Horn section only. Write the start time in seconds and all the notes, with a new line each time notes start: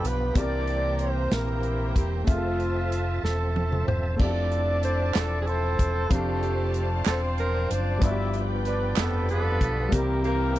Already playing: B3 D4
0.06 B3 B4
0.38 D4 G4 A#4 D5
1.02 C4 C5
1.33 A#3 E4 G4 A#4
2.29 F3 A3 C4 F4
4.21 D4 A4 D5
5.48 C4 E4 A4 C5
6.12 A3 C4 D4 A4
6.75 A3 A4
7.09 C4 F4 C5
7.72 D4 D5
8.04 E4 B4 E5
8.68 D4 D5
8.98 B3 B4
9.31 B3 D4 F4 B4
9.94 A#3 E4 G4 A#4
10.26 A#3 E4 G4 A#4